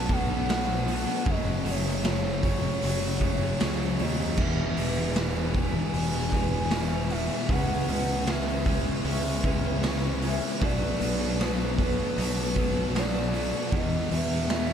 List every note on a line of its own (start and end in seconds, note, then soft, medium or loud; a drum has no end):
0.00 1.05 B1 medium
0.00 0.29 F#3 medium
0.00 0.28 B3 medium
0.00 0.87 D4 medium
0.00 1.26 F#4 medium
0.00 0.10 A4 medium
0.00 1.23 B4 medium
0.00 4.35 F#5 medium
0.00 0.14 A5 loud
0.00 1.25 A5 medium
0.00 1.25 D6 medium
0.09 0.47 B2 medium
0.09 0.48 F#3 medium
0.09 0.30 A3 medium
0.09 0.48 B3 loud
0.09 0.29 D4 medium
0.09 0.27 A4 medium
0.09 1.31 F#5 loud
0.09 kick medium
0.09 open hi-hat medium
0.29 0.47 F#3 medium
0.29 0.48 A3 medium
0.29 0.48 B3 medium
0.29 0.48 D4 medium
0.29 0.49 A4 medium
0.47 0.86 B2 loud
0.47 1.07 B2 medium
0.47 0.69 F#3 loud
0.47 0.84 F#3 medium
0.47 0.68 A3 loud
0.47 0.67 B3 medium
0.47 0.66 D4 loud
0.47 0.66 A4 loud
0.47 snare loud
0.47 open hi-hat medium
0.67 0.87 F#3 medium
0.67 0.86 A3 medium
0.67 0.88 B3 medium
0.67 0.86 D4 medium
0.67 0.86 A4 medium
0.86 1.24 B2 medium
0.86 1.23 F#3 medium
0.86 1.08 F#3 medium
0.86 1.07 A3 medium
0.86 1.05 B3 medium
0.86 1.06 D4 medium
0.86 1.05 A4 medium
0.86 open hi-hat medium
1.06 1.25 F#3 medium
1.06 1.25 A3 medium
1.06 1.24 B3 medium
1.06 1.24 D4 medium
1.06 1.24 A4 medium
1.24 1.60 F#1 medium
1.24 2.01 F#2 loud
1.24 1.63 F#2 medium
1.24 2.02 C#3 medium
1.24 1.64 C#3 loud
1.24 1.62 F#3 loud
1.24 1.66 F#3 medium
1.24 1.63 A3 loud
1.24 1.64 C#4 loud
1.24 1.65 G#4 loud
1.24 kick loud
1.24 open hi-hat medium
1.29 1.71 D#5 loud
1.29 4.36 G#5 medium
1.29 4.36 C#6 medium
1.64 2.66 F#1 medium
1.64 2.03 F#2 medium
1.64 1.86 C#3 medium
1.64 1.83 F#3 medium
1.64 1.85 F#3 medium
1.64 1.83 A3 medium
1.64 1.83 C#4 medium
1.64 1.83 G#4 medium
1.64 open hi-hat medium
1.70 4.02 C#5 loud
1.83 2.03 F#3 medium
1.83 2.05 F#3 medium
1.83 2.02 A3 medium
1.83 2.03 C#4 medium
1.83 2.04 G#4 medium
1.87 2.04 C#3 medium
2.03 2.81 F#2 medium
2.03 2.42 F#2 medium
2.03 2.82 C#3 medium
2.03 2.43 C#3 medium
2.03 2.41 F#3 medium
2.03 2.43 F#3 loud
2.03 2.41 A3 medium
2.03 2.42 C#4 medium
2.03 2.43 G#4 medium
2.03 snare loud
2.03 open hi-hat medium
2.42 3.02 F#2 medium
2.42 2.64 C#3 medium
2.42 2.63 F#3 medium
2.42 2.61 F#3 medium
2.42 2.62 A3 medium
2.42 2.61 C#4 medium
2.42 2.61 G#4 medium
2.42 kick medium
2.42 open hi-hat medium
2.62 3.03 C#3 medium
2.62 3.01 F#3 medium
2.62 3.19 F#3 medium
2.62 3.20 A3 medium
2.62 3.21 C#4 medium
2.62 3.21 G#4 medium
2.81 3.50 F#1 medium
2.81 3.19 F#2 medium
2.81 3.20 C#3 medium
2.81 3.20 F#3 loud
2.81 5.16 G#4 medium
2.81 open hi-hat medium
3.02 3.42 C#3 medium
3.02 3.40 F#3 medium
3.21 3.57 F#2 medium
3.21 3.58 C#3 medium
3.21 3.41 F#3 medium
3.21 3.58 F#3 loud
3.21 3.41 A3 medium
3.21 3.40 C#4 medium
3.21 3.40 G#4 medium
3.21 kick medium
3.21 open hi-hat medium
3.40 3.61 C#3 soft
3.40 3.62 F#3 medium
3.40 3.59 F#3 medium
3.40 3.60 A3 medium
3.40 3.60 C#4 medium
3.40 3.61 G#4 medium
3.59 3.96 C#2 medium
3.59 4.18 F#2 loud
3.59 4.00 F#2 loud
3.59 4.18 C#3 loud
3.59 3.81 C#3 medium
3.59 3.80 F#3 loud
3.59 3.79 F#3 loud
3.59 3.79 A3 loud
3.59 3.78 C#4 loud
3.59 3.79 G#4 loud
3.59 snare loud
3.59 open hi-hat medium
3.79 4.01 C#3 medium
3.79 4.02 F#3 medium
3.79 3.98 F#3 medium
3.79 3.98 A3 medium
3.79 3.99 C#4 medium
3.79 4.00 G#4 medium
3.99 4.35 D#2 medium
3.99 4.37 F#2 medium
3.99 4.21 C#3 medium
3.99 4.18 F#3 medium
3.99 4.36 F#3 medium
3.99 4.18 A3 medium
3.99 4.18 C#4 medium
3.99 4.17 G#4 medium
3.99 4.41 D#5 medium
3.99 open hi-hat medium
4.03 4.19 F#3 medium
4.18 4.36 F#3 medium
4.18 4.37 F#3 medium
4.18 4.36 A3 medium
4.18 4.36 C#4 medium
4.18 4.40 G#4 medium
4.22 4.38 C#3 medium
4.37 4.72 E1 loud
4.37 4.77 E2 medium
4.37 4.79 B2 medium
4.37 5.15 E3 loud
4.37 4.76 G#3 loud
4.37 4.76 B3 loud
4.37 4.76 D#4 loud
4.37 4.78 G#4 loud
4.37 13.70 B4 medium
4.37 5.17 E5 medium
4.37 10.59 G#5 medium
4.37 kick loud
4.37 crash medium
4.41 4.81 E3 medium
4.41 7.48 D#6 medium
4.76 5.78 E1 medium
4.76 5.15 E2 medium
4.76 5.16 G#3 medium
4.76 4.98 B3 medium
4.76 4.97 D#4 medium
4.76 4.96 G#4 medium
4.76 open hi-hat medium
4.80 4.97 B2 medium
4.80 4.96 E3 medium
4.97 5.16 B2 medium
4.97 5.18 E3 medium
4.97 5.17 B3 medium
4.97 5.17 D#4 medium
4.97 5.18 G#4 medium
5.15 5.55 E2 medium
5.15 5.56 B2 medium
5.15 6.37 E3 medium
5.15 5.58 E3 loud
5.15 5.55 G#3 medium
5.15 5.56 B3 medium
5.15 5.55 D#4 loud
5.15 5.57 G#4 loud
5.15 snare loud
5.15 open hi-hat medium
5.54 6.14 E2 medium
5.54 5.76 B2 medium
5.54 6.14 G#3 medium
5.54 5.77 B3 medium
5.54 5.75 D#4 medium
5.54 5.74 G#4 medium
5.54 7.13 G#5 loud
5.54 kick medium
5.54 open hi-hat medium
5.58 5.74 E3 medium
5.75 6.14 B2 soft
5.75 6.12 E3 medium
5.75 6.33 B3 medium
5.75 6.33 D#4 medium
5.75 6.34 G#4 medium
5.93 7.28 E1 medium
5.93 6.31 E2 medium
5.93 6.32 B2 medium
5.93 6.32 E3 loud
5.93 7.50 G#4 medium
5.93 open hi-hat medium
6.13 6.53 B2 medium
6.13 6.51 E3 medium
6.32 6.70 E2 medium
6.32 6.71 B2 medium
6.32 6.71 E3 medium
6.32 6.71 G#3 medium
6.32 6.55 B3 medium
6.32 6.53 D#4 medium
6.32 6.52 G#4 medium
6.32 kick medium
6.32 open hi-hat medium
6.53 6.71 B2 medium
6.53 6.72 E3 medium
6.53 6.72 B3 medium
6.53 6.71 D#4 medium
6.53 6.72 G#4 medium
6.70 7.09 E2 medium
6.70 6.93 B2 loud
6.70 7.30 E3 loud
6.70 6.91 E3 loud
6.70 7.10 G#3 loud
6.70 6.93 B3 loud
6.70 6.92 D#4 loud
6.70 6.91 G#4 loud
6.70 snare loud
6.70 open hi-hat medium
6.92 7.11 B2 medium
6.92 7.11 E3 medium
6.92 7.11 B3 medium
6.92 7.11 D#4 medium
6.92 7.11 G#4 medium
7.10 7.47 E2 medium
7.10 7.31 B2 medium
7.10 7.29 E3 medium
7.10 7.48 G#3 medium
7.10 7.32 B3 medium
7.10 7.30 D#4 medium
7.10 7.30 G#4 medium
7.10 7.52 E5 medium
7.10 open hi-hat medium
7.30 7.49 B2 medium
7.30 7.47 E3 medium
7.30 7.49 B3 medium
7.30 7.48 D#4 medium
7.30 7.48 G#4 medium
7.49 7.83 C#2 loud
7.49 7.86 C#3 medium
7.49 8.26 C#3 loud
7.49 7.87 E3 loud
7.49 7.88 G#3 medium
7.49 7.88 B3 medium
7.49 7.88 C#4 loud
7.49 7.89 C#4 medium
7.49 7.89 G#4 loud
7.49 10.59 E5 medium
7.49 8.32 F#5 loud
7.49 10.60 C#6 medium
7.49 kick loud
7.49 open hi-hat medium
7.88 8.89 C#2 medium
7.88 8.26 C#3 medium
7.88 8.27 E3 medium
7.88 8.09 G#3 medium
7.88 8.10 B3 medium
7.88 8.08 C#4 medium
7.88 8.06 C#4 medium
7.88 8.07 G#4 medium
7.88 open hi-hat medium
8.07 8.27 G#3 medium
8.07 8.28 B3 medium
8.07 8.28 C#4 medium
8.07 8.28 G#4 medium
8.27 8.65 C#3 medium
8.27 9.05 C#3 loud
8.27 8.66 E3 medium
8.27 8.66 G#3 medium
8.27 8.68 B3 loud
8.27 8.67 C#4 medium
8.27 8.68 G#4 medium
8.27 9.06 E5 medium
8.27 snare loud
8.27 open hi-hat medium
8.66 9.25 C#3 medium
8.66 9.25 E3 medium
8.66 8.88 G#3 medium
8.66 8.88 B3 medium
8.66 8.85 C#4 medium
8.66 8.87 C#4 loud
8.66 10.22 E4 medium
8.66 8.86 G#4 medium
8.66 kick medium
8.66 open hi-hat medium
8.86 9.26 G#3 medium
8.86 9.46 B3 medium
8.86 9.24 C#4 medium
8.86 9.45 C#4 medium
8.86 9.47 G#4 medium
9.04 10.39 C#2 medium
9.04 9.42 C#3 medium
9.04 9.43 G#3 medium
9.04 9.43 C#4 medium
9.04 10.61 G#4 medium
9.04 9.80 E5 medium
9.04 open hi-hat medium
9.25 9.66 G#3 medium
9.25 9.64 C#4 medium
9.43 9.81 C#3 medium
9.43 9.83 E3 medium
9.43 9.82 G#3 medium
9.43 9.67 B3 medium
9.43 9.82 C#4 loud
9.43 9.65 C#4 medium
9.43 kick medium
9.43 open hi-hat medium
9.48 9.64 G#4 medium
9.65 9.84 G#3 medium
9.65 9.84 B3 medium
9.65 9.86 C#4 medium
9.65 9.84 C#4 medium
9.65 9.85 G#4 medium
9.83 10.42 C#3 medium
9.83 10.23 C#3 medium
9.83 10.21 E3 loud
9.83 10.05 G#3 loud
9.83 10.05 B3 loud
9.83 10.21 C#4 loud
9.83 10.03 C#4 loud
9.83 10.02 G#4 loud
9.83 snare loud
9.83 open hi-hat medium
9.87 10.03 C#4 loud
10.03 10.24 G#3 medium
10.03 10.23 B3 medium
10.03 10.25 C#4 medium
10.03 10.22 C#4 medium
10.03 10.23 G#4 medium
10.22 10.60 C#3 medium
10.22 10.59 E3 medium
10.22 10.44 G#3 medium
10.22 10.45 B3 medium
10.22 10.42 C#4 loud
10.22 10.42 C#4 medium
10.22 10.62 E4 medium
10.22 10.42 G#4 medium
10.22 open hi-hat medium
10.43 10.61 G#3 medium
10.43 10.62 B3 medium
10.43 10.60 C#4 medium
10.43 10.60 G#4 medium
10.61 10.95 B1 medium
10.61 11.38 B2 medium
10.61 11.00 B2 medium
10.61 10.99 F#3 loud
10.61 11.01 F#3 medium
10.61 11.00 A3 loud
10.61 11.03 B3 loud
10.61 11.01 D4 loud
10.61 11.01 A4 loud
10.61 11.43 D5 loud
10.61 13.71 F#5 medium
10.61 13.71 A5 medium
10.61 13.71 D6 medium
10.61 kick loud
10.61 open hi-hat medium
11.00 12.01 B1 medium
11.00 11.38 B2 medium
11.00 11.38 F#3 medium
11.00 11.22 F#3 medium
11.00 11.21 A3 medium
11.00 12.55 B3 medium
11.00 11.21 B3 loud
11.00 11.20 D4 medium
11.00 11.19 A4 medium
11.00 open hi-hat medium
11.20 11.39 F#3 medium
11.20 11.38 A3 medium
11.20 11.41 B3 medium
11.20 11.39 D4 medium
11.20 11.39 A4 medium
11.39 12.17 B2 medium
11.39 11.77 B2 medium
11.39 11.77 F#3 medium
11.39 11.79 F#3 medium
11.39 11.77 A3 loud
11.39 11.81 B3 loud
11.39 11.78 D4 loud
11.39 11.79 A4 loud
11.39 12.18 B4 medium
11.39 snare loud
11.39 open hi-hat medium
11.78 12.37 B2 medium
11.78 12.37 F#3 medium
11.78 11.98 F#3 medium
11.78 11.99 A3 medium
11.78 11.97 B3 medium
11.78 11.97 D4 medium
11.78 11.97 A4 loud
11.78 kick medium
11.78 open hi-hat medium
11.98 12.37 F#3 soft
11.98 12.55 A3 medium
11.98 12.36 B3 medium
11.98 12.55 D4 medium
11.98 12.56 A4 medium
12.17 13.52 B1 medium
12.17 12.55 B2 medium
12.17 12.55 F#3 medium
12.17 12.56 B3 loud
12.17 13.73 A4 medium
12.17 13.00 B4 loud
12.17 open hi-hat medium
12.36 12.75 F#3 medium
12.36 12.74 B3 medium
12.55 12.93 B2 medium
12.55 12.94 F#3 medium
12.55 12.76 A3 medium
12.55 13.71 B3 medium
12.55 12.94 B3 loud
12.55 12.76 D4 medium
12.55 12.75 A4 medium
12.55 kick medium
12.55 open hi-hat medium
12.74 12.94 F#3 medium
12.74 12.94 A3 medium
12.74 12.96 B3 medium
12.74 12.95 D4 medium
12.74 12.96 A4 medium
12.94 13.32 B2 medium
12.94 13.53 B2 loud
12.94 13.14 F#3 medium
12.94 13.33 F#3 loud
12.94 13.15 A3 loud
12.94 13.13 B3 medium
12.94 13.14 D4 loud
12.94 13.13 A4 loud
12.94 snare loud
12.94 open hi-hat medium
12.99 13.77 D5 loud
13.13 13.32 F#3 medium
13.13 13.33 A3 medium
13.13 13.34 B3 medium
13.13 13.34 D4 medium
13.13 13.34 A4 medium
13.33 13.70 B2 medium
13.33 13.53 F#3 medium
13.33 13.71 F#3 medium
13.33 13.54 A3 medium
13.33 13.53 B3 medium
13.33 13.53 D4 medium
13.33 13.52 A4 medium
13.33 open hi-hat medium
13.53 13.71 F#3 medium
13.53 13.71 A3 medium
13.53 14.73 B3 medium
13.53 13.71 D4 medium
13.53 13.70 A4 medium
13.71 14.09 E2 medium
13.71 14.06 E2 loud
13.71 14.11 B2 medium
13.71 14.49 E3 loud
13.71 14.12 E3 loud
13.71 14.10 G#3 loud
13.71 14.11 B3 loud
13.71 14.11 D#4 loud
13.71 14.12 G#4 loud
13.71 14.73 B4 medium
13.71 14.73 G#5 medium
13.71 14.73 D#6 medium
13.71 kick loud
13.71 open hi-hat medium
13.76 14.16 D#5 loud
14.10 14.47 E2 medium
14.10 14.73 E2 medium
14.10 14.31 B2 medium
14.10 14.29 E3 medium
14.10 14.49 G#3 medium
14.10 14.32 B3 medium
14.10 14.31 D#4 medium
14.10 14.30 G#4 medium
14.10 open hi-hat medium
14.15 14.73 E5 loud
14.31 14.48 B2 medium
14.31 14.49 E3 medium
14.31 14.49 B3 medium
14.31 14.50 D#4 medium
14.31 14.50 G#4 medium
14.48 14.73 E2 medium
14.48 14.73 B2 loud
14.48 14.73 E3 medium
14.48 14.73 G#3 medium
14.48 14.73 B3 medium
14.48 14.73 D#4 loud
14.48 14.73 G#4 medium
14.48 snare loud
14.48 open hi-hat medium